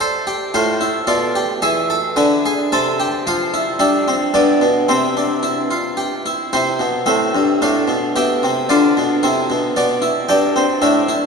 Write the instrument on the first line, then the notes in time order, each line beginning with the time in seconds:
harpsichord
0.01 A4 C5
0.27 G4
0.54 A2 F4 C5
0.81 E4
1.07 B2 F4 D5
1.35 G4
1.62 E3 G#4 E5
1.90 A4
2.16 D3 B4 G#5
2.46 G#4
2.72 C3 A4 A5
3.00 G4
3.27 F3 F4 F5
3.54 E4
3.79 G3 D4 E5
4.08 C4
4.34 G2 B3 D5
4.62 B2
4.89 C3 C4 E5
5.17 D4
5.43 E4
5.71 F4
5.97 G4
6.26 E4
6.53 C3 E4 C5
6.80 B2
7.06 A2 C4 E5
7.35 G2
7.62 A2 D4 F5
7.88 B2
8.16 B2 G4 E5
8.43 C3
8.69 D3 F4 D5
8.97 B2
9.23 C3 E4
9.50 B2
9.76 B2 F#4 D5
10.02 E4
10.29 G2 D4 G5
10.56 C4
10.82 A2 D4 E5
11.09 E4